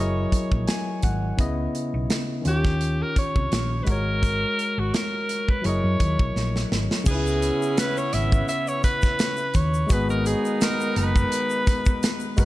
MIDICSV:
0, 0, Header, 1, 7, 480
1, 0, Start_track
1, 0, Tempo, 709220
1, 937, Time_signature, 4, 2, 24, 8
1, 8426, End_track
2, 0, Start_track
2, 0, Title_t, "Alto saxophone"
2, 0, Program_c, 0, 65
2, 0, Note_on_c, 0, 73, 85
2, 701, Note_off_c, 0, 73, 0
2, 1675, Note_on_c, 0, 67, 84
2, 2044, Note_on_c, 0, 70, 83
2, 2054, Note_off_c, 0, 67, 0
2, 2147, Note_off_c, 0, 70, 0
2, 2155, Note_on_c, 0, 73, 101
2, 2591, Note_on_c, 0, 71, 65
2, 2601, Note_off_c, 0, 73, 0
2, 2637, Note_on_c, 0, 70, 102
2, 2647, Note_off_c, 0, 71, 0
2, 3244, Note_on_c, 0, 66, 81
2, 3254, Note_off_c, 0, 70, 0
2, 3351, Note_on_c, 0, 70, 79
2, 3361, Note_off_c, 0, 66, 0
2, 3722, Note_on_c, 0, 71, 77
2, 3732, Note_off_c, 0, 70, 0
2, 3825, Note_on_c, 0, 73, 85
2, 3835, Note_off_c, 0, 71, 0
2, 4543, Note_off_c, 0, 73, 0
2, 4790, Note_on_c, 0, 68, 96
2, 5273, Note_on_c, 0, 71, 97
2, 5283, Note_off_c, 0, 68, 0
2, 5398, Note_on_c, 0, 73, 100
2, 5409, Note_off_c, 0, 71, 0
2, 5506, Note_on_c, 0, 76, 106
2, 5516, Note_off_c, 0, 73, 0
2, 5741, Note_off_c, 0, 76, 0
2, 5745, Note_on_c, 0, 76, 102
2, 5876, Note_on_c, 0, 73, 96
2, 5886, Note_off_c, 0, 76, 0
2, 5978, Note_off_c, 0, 73, 0
2, 5982, Note_on_c, 0, 71, 100
2, 6467, Note_on_c, 0, 73, 100
2, 6477, Note_off_c, 0, 71, 0
2, 6714, Note_on_c, 0, 71, 93
2, 6724, Note_off_c, 0, 73, 0
2, 6832, Note_off_c, 0, 71, 0
2, 6836, Note_on_c, 0, 70, 85
2, 6935, Note_off_c, 0, 70, 0
2, 6946, Note_on_c, 0, 68, 88
2, 7188, Note_on_c, 0, 70, 94
2, 7198, Note_off_c, 0, 68, 0
2, 7422, Note_off_c, 0, 70, 0
2, 7428, Note_on_c, 0, 71, 93
2, 8354, Note_off_c, 0, 71, 0
2, 8426, End_track
3, 0, Start_track
3, 0, Title_t, "Tine electric piano"
3, 0, Program_c, 1, 4
3, 0, Note_on_c, 1, 54, 68
3, 0, Note_on_c, 1, 64, 60
3, 0, Note_on_c, 1, 68, 59
3, 0, Note_on_c, 1, 70, 58
3, 0, Note_on_c, 1, 75, 72
3, 113, Control_c, 1, 64, 127
3, 458, Note_on_c, 1, 80, 62
3, 681, Note_off_c, 1, 80, 0
3, 702, Note_on_c, 1, 78, 67
3, 908, Note_off_c, 1, 54, 0
3, 915, Note_off_c, 1, 64, 0
3, 919, Note_off_c, 1, 68, 0
3, 923, Note_off_c, 1, 78, 0
3, 926, Note_off_c, 1, 70, 0
3, 929, Note_on_c, 1, 49, 69
3, 930, Note_off_c, 1, 75, 0
3, 936, Note_on_c, 1, 59, 66
3, 942, Note_on_c, 1, 64, 64
3, 945, Control_c, 1, 64, 0
3, 952, Note_on_c, 1, 75, 71
3, 1046, Control_c, 1, 64, 127
3, 1636, Note_on_c, 1, 51, 60
3, 1650, Note_on_c, 1, 61, 52
3, 1654, Note_off_c, 1, 49, 0
3, 1658, Note_off_c, 1, 59, 0
3, 1661, Note_off_c, 1, 64, 0
3, 1661, Note_on_c, 1, 65, 56
3, 1666, Note_off_c, 1, 75, 0
3, 1668, Control_c, 1, 64, 0
3, 1673, Note_on_c, 1, 67, 52
3, 1683, Note_on_c, 1, 73, 62
3, 1771, Control_c, 1, 64, 127
3, 2589, Note_off_c, 1, 51, 0
3, 2597, Note_off_c, 1, 61, 0
3, 2602, Note_off_c, 1, 65, 0
3, 2602, Note_on_c, 1, 56, 62
3, 2608, Note_off_c, 1, 67, 0
3, 2614, Note_off_c, 1, 73, 0
3, 2618, Note_on_c, 1, 66, 59
3, 2629, Control_c, 1, 64, 0
3, 2634, Note_on_c, 1, 70, 59
3, 2649, Note_on_c, 1, 73, 72
3, 2731, Control_c, 1, 64, 127
3, 3788, Note_off_c, 1, 56, 0
3, 3796, Note_off_c, 1, 66, 0
3, 3802, Note_on_c, 1, 54, 56
3, 3804, Note_off_c, 1, 70, 0
3, 3812, Note_off_c, 1, 73, 0
3, 3813, Note_on_c, 1, 64, 49
3, 3823, Note_on_c, 1, 68, 48
3, 3829, Control_c, 1, 64, 0
3, 3835, Note_on_c, 1, 70, 49
3, 3848, Note_on_c, 1, 75, 57
3, 3943, Control_c, 1, 64, 127
3, 4752, Note_off_c, 1, 54, 0
3, 4758, Note_off_c, 1, 64, 0
3, 4762, Note_on_c, 1, 49, 62
3, 4763, Note_off_c, 1, 68, 0
3, 4769, Note_off_c, 1, 70, 0
3, 4775, Note_off_c, 1, 75, 0
3, 4778, Note_on_c, 1, 61, 56
3, 4788, Control_c, 1, 64, 0
3, 4791, Note_on_c, 1, 63, 45
3, 4809, Note_on_c, 1, 71, 66
3, 4834, Note_off_c, 1, 63, 0
3, 4836, Note_on_c, 1, 64, 58
3, 4908, Control_c, 1, 64, 127
3, 6662, Note_off_c, 1, 49, 0
3, 6670, Note_off_c, 1, 61, 0
3, 6678, Note_on_c, 1, 56, 64
3, 6685, Note_off_c, 1, 71, 0
3, 6693, Note_on_c, 1, 66, 58
3, 6699, Note_off_c, 1, 64, 0
3, 6708, Control_c, 1, 64, 0
3, 6710, Note_on_c, 1, 68, 62
3, 6725, Note_on_c, 1, 59, 76
3, 6838, Control_c, 1, 64, 127
3, 8338, Note_off_c, 1, 56, 0
3, 8346, Note_off_c, 1, 66, 0
3, 8354, Note_off_c, 1, 68, 0
3, 8362, Note_off_c, 1, 59, 0
3, 8369, Note_on_c, 1, 56, 65
3, 8375, Note_on_c, 1, 66, 59
3, 8382, Note_on_c, 1, 70, 59
3, 8391, Note_on_c, 1, 71, 72
3, 8426, Note_off_c, 1, 56, 0
3, 8426, Note_off_c, 1, 66, 0
3, 8426, Note_off_c, 1, 70, 0
3, 8426, Note_off_c, 1, 71, 0
3, 8426, End_track
4, 0, Start_track
4, 0, Title_t, "Horn section"
4, 0, Program_c, 2, 61
4, 4783, Note_on_c, 2, 59, 76
4, 4784, Note_on_c, 2, 61, 76
4, 4784, Note_on_c, 2, 64, 87
4, 6433, Note_off_c, 2, 59, 0
4, 6433, Note_off_c, 2, 61, 0
4, 6433, Note_off_c, 2, 64, 0
4, 6698, Note_on_c, 2, 59, 77
4, 6698, Note_on_c, 2, 63, 84
4, 6699, Note_on_c, 2, 51, 82
4, 8349, Note_off_c, 2, 51, 0
4, 8349, Note_off_c, 2, 59, 0
4, 8349, Note_off_c, 2, 63, 0
4, 8426, End_track
5, 0, Start_track
5, 0, Title_t, "Fingered electric bass"
5, 0, Program_c, 3, 33
5, 0, Note_on_c, 3, 30, 86
5, 168, Note_off_c, 3, 30, 0
5, 350, Note_on_c, 3, 34, 73
5, 436, Note_off_c, 3, 34, 0
5, 699, Note_on_c, 3, 32, 88
5, 889, Note_off_c, 3, 32, 0
5, 936, Note_on_c, 3, 37, 89
5, 1127, Note_off_c, 3, 37, 0
5, 1311, Note_on_c, 3, 35, 83
5, 1397, Note_off_c, 3, 35, 0
5, 1663, Note_on_c, 3, 39, 81
5, 2042, Note_off_c, 3, 39, 0
5, 2273, Note_on_c, 3, 36, 64
5, 2359, Note_off_c, 3, 36, 0
5, 2383, Note_on_c, 3, 34, 81
5, 2572, Note_off_c, 3, 34, 0
5, 2623, Note_on_c, 3, 32, 93
5, 3002, Note_off_c, 3, 32, 0
5, 3232, Note_on_c, 3, 32, 74
5, 3319, Note_off_c, 3, 32, 0
5, 3821, Note_on_c, 3, 30, 86
5, 3924, Note_off_c, 3, 30, 0
5, 3951, Note_on_c, 3, 42, 90
5, 4039, Note_off_c, 3, 42, 0
5, 4062, Note_on_c, 3, 39, 82
5, 4164, Note_off_c, 3, 39, 0
5, 4194, Note_on_c, 3, 35, 71
5, 4280, Note_off_c, 3, 35, 0
5, 4303, Note_on_c, 3, 34, 81
5, 4492, Note_off_c, 3, 34, 0
5, 4545, Note_on_c, 3, 32, 76
5, 4646, Note_off_c, 3, 32, 0
5, 4780, Note_on_c, 3, 37, 97
5, 5073, Note_off_c, 3, 37, 0
5, 5506, Note_on_c, 3, 32, 88
5, 5694, Note_off_c, 3, 32, 0
5, 6463, Note_on_c, 3, 39, 88
5, 6651, Note_off_c, 3, 39, 0
5, 6700, Note_on_c, 3, 32, 100
5, 6992, Note_off_c, 3, 32, 0
5, 7419, Note_on_c, 3, 30, 92
5, 7608, Note_off_c, 3, 30, 0
5, 8380, Note_on_c, 3, 30, 86
5, 8426, Note_off_c, 3, 30, 0
5, 8426, End_track
6, 0, Start_track
6, 0, Title_t, "Muted fingered electric bass strokes"
6, 218, Note_on_c, 9, 29, 42
6, 286, Note_off_c, 9, 29, 0
6, 2141, Note_on_c, 9, 29, 40
6, 2209, Note_off_c, 9, 29, 0
6, 8426, End_track
7, 0, Start_track
7, 0, Title_t, "Drums"
7, 219, Note_on_c, 9, 36, 74
7, 222, Note_on_c, 9, 42, 68
7, 286, Note_off_c, 9, 36, 0
7, 289, Note_off_c, 9, 42, 0
7, 349, Note_on_c, 9, 36, 88
7, 417, Note_off_c, 9, 36, 0
7, 457, Note_on_c, 9, 42, 78
7, 464, Note_on_c, 9, 38, 106
7, 525, Note_off_c, 9, 42, 0
7, 532, Note_off_c, 9, 38, 0
7, 694, Note_on_c, 9, 42, 65
7, 699, Note_on_c, 9, 36, 82
7, 762, Note_off_c, 9, 42, 0
7, 767, Note_off_c, 9, 36, 0
7, 937, Note_on_c, 9, 42, 75
7, 938, Note_on_c, 9, 36, 102
7, 1005, Note_off_c, 9, 42, 0
7, 1006, Note_off_c, 9, 36, 0
7, 1184, Note_on_c, 9, 42, 60
7, 1251, Note_off_c, 9, 42, 0
7, 1421, Note_on_c, 9, 42, 78
7, 1424, Note_on_c, 9, 38, 100
7, 1489, Note_off_c, 9, 42, 0
7, 1492, Note_off_c, 9, 38, 0
7, 1658, Note_on_c, 9, 42, 75
7, 1726, Note_off_c, 9, 42, 0
7, 1791, Note_on_c, 9, 36, 87
7, 1791, Note_on_c, 9, 38, 29
7, 1858, Note_off_c, 9, 36, 0
7, 1859, Note_off_c, 9, 38, 0
7, 1900, Note_on_c, 9, 42, 66
7, 1968, Note_off_c, 9, 42, 0
7, 2141, Note_on_c, 9, 36, 79
7, 2141, Note_on_c, 9, 42, 71
7, 2208, Note_off_c, 9, 42, 0
7, 2209, Note_off_c, 9, 36, 0
7, 2272, Note_on_c, 9, 36, 87
7, 2340, Note_off_c, 9, 36, 0
7, 2381, Note_on_c, 9, 42, 80
7, 2388, Note_on_c, 9, 38, 108
7, 2448, Note_off_c, 9, 42, 0
7, 2455, Note_off_c, 9, 38, 0
7, 2616, Note_on_c, 9, 42, 66
7, 2622, Note_on_c, 9, 36, 83
7, 2684, Note_off_c, 9, 42, 0
7, 2690, Note_off_c, 9, 36, 0
7, 2861, Note_on_c, 9, 36, 100
7, 2862, Note_on_c, 9, 42, 77
7, 2929, Note_off_c, 9, 36, 0
7, 2930, Note_off_c, 9, 42, 0
7, 3106, Note_on_c, 9, 42, 60
7, 3174, Note_off_c, 9, 42, 0
7, 3343, Note_on_c, 9, 42, 79
7, 3347, Note_on_c, 9, 38, 107
7, 3411, Note_off_c, 9, 42, 0
7, 3414, Note_off_c, 9, 38, 0
7, 3582, Note_on_c, 9, 42, 74
7, 3649, Note_off_c, 9, 42, 0
7, 3712, Note_on_c, 9, 36, 85
7, 3780, Note_off_c, 9, 36, 0
7, 3819, Note_on_c, 9, 42, 64
7, 3887, Note_off_c, 9, 42, 0
7, 4061, Note_on_c, 9, 42, 73
7, 4062, Note_on_c, 9, 36, 79
7, 4128, Note_off_c, 9, 42, 0
7, 4129, Note_off_c, 9, 36, 0
7, 4192, Note_on_c, 9, 36, 91
7, 4260, Note_off_c, 9, 36, 0
7, 4307, Note_on_c, 9, 38, 49
7, 4374, Note_off_c, 9, 38, 0
7, 4438, Note_on_c, 9, 38, 50
7, 4506, Note_off_c, 9, 38, 0
7, 4548, Note_on_c, 9, 38, 76
7, 4615, Note_off_c, 9, 38, 0
7, 4678, Note_on_c, 9, 38, 73
7, 4745, Note_off_c, 9, 38, 0
7, 4778, Note_on_c, 9, 82, 78
7, 4781, Note_on_c, 9, 36, 122
7, 4781, Note_on_c, 9, 49, 95
7, 4846, Note_off_c, 9, 82, 0
7, 4848, Note_off_c, 9, 36, 0
7, 4849, Note_off_c, 9, 49, 0
7, 4916, Note_on_c, 9, 82, 52
7, 4984, Note_off_c, 9, 82, 0
7, 5025, Note_on_c, 9, 42, 65
7, 5027, Note_on_c, 9, 82, 54
7, 5092, Note_off_c, 9, 42, 0
7, 5094, Note_off_c, 9, 82, 0
7, 5159, Note_on_c, 9, 82, 45
7, 5226, Note_off_c, 9, 82, 0
7, 5262, Note_on_c, 9, 42, 86
7, 5266, Note_on_c, 9, 38, 114
7, 5267, Note_on_c, 9, 82, 66
7, 5330, Note_off_c, 9, 42, 0
7, 5333, Note_off_c, 9, 38, 0
7, 5335, Note_off_c, 9, 82, 0
7, 5394, Note_on_c, 9, 82, 49
7, 5462, Note_off_c, 9, 82, 0
7, 5501, Note_on_c, 9, 42, 85
7, 5569, Note_off_c, 9, 42, 0
7, 5633, Note_on_c, 9, 36, 91
7, 5635, Note_on_c, 9, 82, 46
7, 5701, Note_off_c, 9, 36, 0
7, 5702, Note_off_c, 9, 82, 0
7, 5743, Note_on_c, 9, 82, 60
7, 5744, Note_on_c, 9, 42, 74
7, 5811, Note_off_c, 9, 42, 0
7, 5811, Note_off_c, 9, 82, 0
7, 5870, Note_on_c, 9, 82, 49
7, 5938, Note_off_c, 9, 82, 0
7, 5981, Note_on_c, 9, 82, 54
7, 5983, Note_on_c, 9, 36, 87
7, 5984, Note_on_c, 9, 42, 80
7, 6049, Note_off_c, 9, 82, 0
7, 6050, Note_off_c, 9, 36, 0
7, 6051, Note_off_c, 9, 42, 0
7, 6104, Note_on_c, 9, 82, 49
7, 6113, Note_on_c, 9, 36, 100
7, 6121, Note_on_c, 9, 38, 35
7, 6171, Note_off_c, 9, 82, 0
7, 6180, Note_off_c, 9, 36, 0
7, 6189, Note_off_c, 9, 38, 0
7, 6220, Note_on_c, 9, 42, 91
7, 6225, Note_on_c, 9, 82, 65
7, 6227, Note_on_c, 9, 38, 124
7, 6287, Note_off_c, 9, 42, 0
7, 6292, Note_off_c, 9, 82, 0
7, 6294, Note_off_c, 9, 38, 0
7, 6340, Note_on_c, 9, 82, 46
7, 6408, Note_off_c, 9, 82, 0
7, 6455, Note_on_c, 9, 42, 73
7, 6459, Note_on_c, 9, 82, 51
7, 6462, Note_on_c, 9, 36, 91
7, 6522, Note_off_c, 9, 42, 0
7, 6527, Note_off_c, 9, 82, 0
7, 6530, Note_off_c, 9, 36, 0
7, 6593, Note_on_c, 9, 82, 47
7, 6661, Note_off_c, 9, 82, 0
7, 6695, Note_on_c, 9, 82, 76
7, 6702, Note_on_c, 9, 36, 117
7, 6702, Note_on_c, 9, 42, 88
7, 6763, Note_off_c, 9, 82, 0
7, 6769, Note_off_c, 9, 36, 0
7, 6770, Note_off_c, 9, 42, 0
7, 6834, Note_on_c, 9, 82, 49
7, 6902, Note_off_c, 9, 82, 0
7, 6944, Note_on_c, 9, 82, 52
7, 6945, Note_on_c, 9, 42, 66
7, 7012, Note_off_c, 9, 82, 0
7, 7013, Note_off_c, 9, 42, 0
7, 7074, Note_on_c, 9, 82, 48
7, 7141, Note_off_c, 9, 82, 0
7, 7181, Note_on_c, 9, 82, 69
7, 7184, Note_on_c, 9, 42, 86
7, 7187, Note_on_c, 9, 38, 115
7, 7248, Note_off_c, 9, 82, 0
7, 7251, Note_off_c, 9, 42, 0
7, 7255, Note_off_c, 9, 38, 0
7, 7311, Note_on_c, 9, 82, 48
7, 7379, Note_off_c, 9, 82, 0
7, 7420, Note_on_c, 9, 42, 84
7, 7488, Note_off_c, 9, 42, 0
7, 7551, Note_on_c, 9, 36, 90
7, 7555, Note_on_c, 9, 82, 50
7, 7618, Note_off_c, 9, 36, 0
7, 7623, Note_off_c, 9, 82, 0
7, 7660, Note_on_c, 9, 42, 76
7, 7664, Note_on_c, 9, 82, 64
7, 7728, Note_off_c, 9, 42, 0
7, 7732, Note_off_c, 9, 82, 0
7, 7782, Note_on_c, 9, 82, 48
7, 7850, Note_off_c, 9, 82, 0
7, 7899, Note_on_c, 9, 82, 52
7, 7900, Note_on_c, 9, 36, 91
7, 7901, Note_on_c, 9, 42, 77
7, 7967, Note_off_c, 9, 36, 0
7, 7967, Note_off_c, 9, 82, 0
7, 7968, Note_off_c, 9, 42, 0
7, 8023, Note_on_c, 9, 82, 52
7, 8030, Note_on_c, 9, 36, 97
7, 8091, Note_off_c, 9, 82, 0
7, 8098, Note_off_c, 9, 36, 0
7, 8141, Note_on_c, 9, 42, 94
7, 8142, Note_on_c, 9, 82, 68
7, 8148, Note_on_c, 9, 38, 124
7, 8208, Note_off_c, 9, 42, 0
7, 8210, Note_off_c, 9, 82, 0
7, 8216, Note_off_c, 9, 38, 0
7, 8257, Note_on_c, 9, 82, 45
7, 8324, Note_off_c, 9, 82, 0
7, 8374, Note_on_c, 9, 46, 53
7, 8374, Note_on_c, 9, 82, 52
7, 8378, Note_on_c, 9, 36, 91
7, 8426, Note_off_c, 9, 36, 0
7, 8426, Note_off_c, 9, 46, 0
7, 8426, Note_off_c, 9, 82, 0
7, 8426, End_track
0, 0, End_of_file